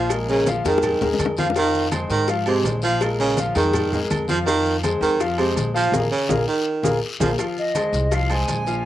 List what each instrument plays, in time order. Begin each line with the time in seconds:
Already playing: upright bass A#1, baritone saxophone F3
0.10 grand piano G#3 G#4 A#4, cowbell, high conga, low agogo, long guiro, maracas
0.28 baritone saxophone C#3, grand piano G#3 G#4 A#4, high conga, maracas
0.46 grand piano F3 F4 F5, cowbell, high conga, low agogo, short guiro, maracas
0.64 upright bass F2, baritone saxophone D#3, grand piano G#3 G#4 A#4, cowbell, high bongo, high conga, low agogo, short guiro, maracas
0.78 high bongo
0.82 cowbell, high conga, low conga, low agogo, long guiro, maracas
1.01 upright bass D#2, grand piano G#3 G#4 A#4, low bongo, high conga, low conga, maracas
1.14 low bongo
1.19 upright bass F2, cowbell, high conga, low timbale, low agogo, short guiro, maracas
1.26 low bongo
1.37 grand piano F3 F4 F5, baritone saxophone F3, cowbell, high conga, short guiro, maracas
1.50 low bongo
1.54 baritone saxophone D#3, grand piano F3 F4 F5, cowbell, high conga, low agogo, long guiro, maracas
1.75 high conga, maracas
1.91 grand piano G#3 G#4 C5, cowbell, high conga, low agogo, short guiro, maracas
2.10 upright bass G#2, baritone saxophone D#3, cowbell, short guiro, maracas
2.28 grand piano F3 F4 F5, cowbell, high conga, low agogo, long guiro, maracas
2.46 baritone saxophone C3, grand piano G#3 G#4 C5, high conga, low agogo, maracas
2.64 upright bass A#1, cowbell, high conga, low timbale, low agogo, short guiro, maracas
2.82 grand piano F3 F4 F5, baritone saxophone F3, high conga, short guiro, maracas
3.01 grand piano G#3 G#4 A#4, cowbell, high conga, low agogo, long guiro, maracas
3.19 baritone saxophone C#3, grand piano G#3 G#4 A#4, high conga, maracas
3.37 grand piano F3 F4 F5, cowbell, high conga, low agogo, short guiro, maracas
3.55 upright bass F2, baritone saxophone D#3, grand piano G#3 G#4 A#4, cowbell, high conga, low agogo, short guiro, maracas
3.73 cowbell, high conga, low conga, low agogo, long guiro, maracas
3.92 grand piano G#3 G#4 A#4, high conga, low conga, maracas
4.10 upright bass F2, cowbell, high conga, low agogo, short guiro, maracas
4.28 baritone saxophone F3, grand piano F3 F4 F5, cowbell, high conga, short guiro, maracas
4.46 baritone saxophone D#3, grand piano F3 F4 F5, cowbell, high conga, low agogo, long guiro, maracas
4.65 high conga, maracas
4.83 grand piano G#3 G#4 C5, cowbell, high conga, low agogo, short guiro, maracas
5.01 upright bass F2, baritone saxophone D#3, cowbell, short guiro, maracas
5.20 grand piano F3 F4 F5, cowbell, high conga, low agogo, long guiro, maracas
5.38 baritone saxophone C3, grand piano G#3 G#4 C5, high conga, low agogo, maracas
5.56 upright bass A#1, cowbell, high conga, low agogo, short guiro, maracas
5.74 grand piano F3 F4 F5, baritone saxophone F3, high conga, short guiro, maracas
5.92 upright bass A#1, grand piano F4 G#4 A#4, cowbell, high conga, high timbale, long guiro, maracas
6.12 baritone saxophone C#3
6.29 upright bass A#1, grand piano F4 G#4 A#4, cowbell, high conga, high timbale, long guiro, maracas
6.47 baritone saxophone D#3
6.83 upright bass A#1, grand piano F4 G#4 A#4, cowbell, high conga, high timbale, long guiro, maracas
7.20 upright bass A#1, baritone saxophone F3, grand piano F4 G#4 A#4, cowbell, high conga, high timbale, long guiro, maracas
7.39 grand piano F3 F4 F5, cowbell, high conga, low agogo, long guiro, maracas
7.57 flute D#5, high conga, maracas
7.75 grand piano G#3 G#4 C5, cowbell, high conga, low agogo, short guiro, maracas
7.93 upright bass C2, cowbell, high conga, short guiro, maracas
8.11 grand piano F3 F4 F5, flute F5, cowbell, high conga, low agogo, long guiro, maracas
8.30 grand piano G#3 G#4 C5, flute G#5, high conga, low agogo, maracas
8.48 upright bass A#1, cowbell, high conga, low agogo, short guiro, maracas
8.67 grand piano F3 F4 F5, high conga, short guiro, maracas